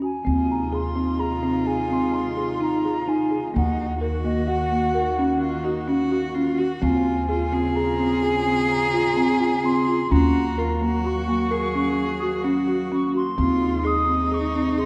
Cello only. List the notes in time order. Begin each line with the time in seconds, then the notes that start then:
0.27 F4
3.55 D#4
4.00 F#4
5.40 F4
5.64 D#4
5.88 F#4
6.35 F4
6.59 F#4
6.83 F4
7.29 F4
7.53 G#4
10.12 F#4
10.59 F4
10.74 F4
10.82 F#4
11.52 G#4
12.45 F#4
13.39 F4
13.84 D#4